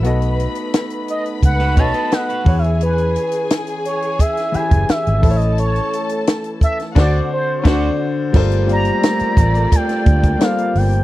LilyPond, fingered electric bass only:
\new Staff \with { instrumentName = "Fingered electric bass" } { \clef bass \time 4/4 \key e \major \tempo 4 = 87 b,,8. r4 r16 cis,8 b,,16 r8. e,8~ | e,8. r2 fis,,16 r16 gis,,16 a,,8~ | a,,8 r4. d,8 r8 d,8 r8 | \key g \minor g,,4 r8 a,,8 r8 d,8 r8 g,,8 | }